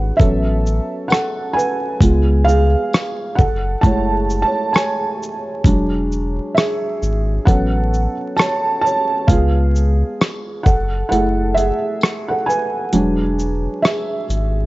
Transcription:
Already playing: G#1 F#3 G#3 D4 B4 F#5
0.17 A1 F#3 B3 C#4 A4 E5, kick, closed hi-hat
0.67 shaker
1.08 A4 F#5, tambourine
1.12 cross-stick, closed hi-hat
1.53 B4 G#5
1.59 shaker
2.01 C#2 G#3 B3 F4, kick, closed hi-hat
2.44 G#4 F5
2.49 shaker
2.93 cross-stick, closed hi-hat, tambourine
3.35 F#1 A4 F#5, kick, shaker
3.81 F#1 G#3 A3 E4 C#5 A5, kick, closed hi-hat
4.30 shaker
4.42 C#5 A5
4.73 C#5 G#5, cross-stick, tambourine
4.78 closed hi-hat
5.23 shaker
5.64 E1 F#3 G#3 D4, kick, closed hi-hat
6.12 shaker
6.54 G#4 E5, cross-stick, tambourine
6.58 closed hi-hat
7.02 G#1, shaker
7.45 A1 F#3 B3 C#4 A4 F#5, kick, closed hi-hat
7.94 shaker
8.37 C#5 A5, cross-stick, tambourine
8.42 closed hi-hat
8.82 C#5 A5
8.87 shaker
9.28 C#2 G#3 B3 F4 G#4 F5, kick, closed hi-hat
9.76 shaker
10.21 cross-stick, closed hi-hat, tambourine
10.64 F#1 A4 F#5, kick, shaker
11.09 F#1 A3 E4 G#4 A4 F#5, closed hi-hat
11.55 G#4 E5, closed hi-hat, shaker
12.01 cross-stick, tambourine
12.05 closed hi-hat
12.28 A4 F#5
12.46 B4 G#5, shaker
12.92 E1 F#3 G#3 D4, closed hi-hat
13.39 shaker
13.82 G#4 E5, cross-stick, closed hi-hat, tambourine
14.29 G#1, closed hi-hat, shaker

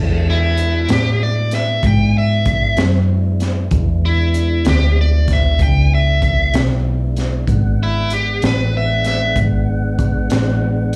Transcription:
Already playing: E2 G#3 B3 D4 E4
0.30 E4
0.57 closed hi-hat
0.88 A2 G4, snare, closed hi-hat
1.23 D5
1.51 E5, snare, closed hi-hat
1.83 G#2, kick, closed hi-hat
1.87 G5
2.18 E5
2.45 kick, closed hi-hat
2.77 F#2, snare, closed hi-hat
3.40 snare, closed hi-hat
3.71 E2 G#3 B3 D4 E4, kick, closed hi-hat
4.05 E4
4.34 closed hi-hat
4.65 D2 G4, snare, closed hi-hat
5.01 D5
5.28 kick, snare, closed hi-hat
5.33 E5
5.59 C#2 G5, kick, closed hi-hat
5.95 E5
6.22 kick, closed hi-hat
6.54 B1, snare, closed hi-hat
7.17 snare, closed hi-hat
7.47 G#1 G#3 B3 D4 F#5, kick, closed hi-hat
7.83 E4
8.10 G4, closed hi-hat
8.42 A1, snare, closed hi-hat
8.46 B4
8.77 E5
9.04 E5, snare, closed hi-hat
9.36 G#1, kick, closed hi-hat
9.99 kick, closed hi-hat
10.30 A1, snare, closed hi-hat

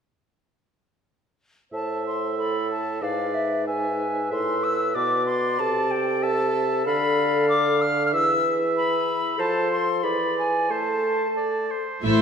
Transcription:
1.72 A2 C5 E5 A5
2.06 C6
2.38 A4 B5
2.71 A5
3.02 G#2 B4 D5 F5
3.34 E5
3.66 B4 E5 G#5
4.31 A2 E5 C6
4.63 E6
4.95 B2 D5 D6
5.25 C6
5.59 C3 A4 A5
5.90 G5
6.23 A4 E5 A5
6.86 D3 A4 F5 B5
7.49 D6
7.81 F6
8.06 F6
8.13 E3 G#4 E5 E6
8.76 B5
9.38 F3 A4 C5 A5
9.72 C6
10.03 E3 G#4 D5 B5
10.38 G#5
10.70 A3 A4 C5 A5
11.37 D5
11.71 C5
12.03 A1 A3 E4 C5 E5

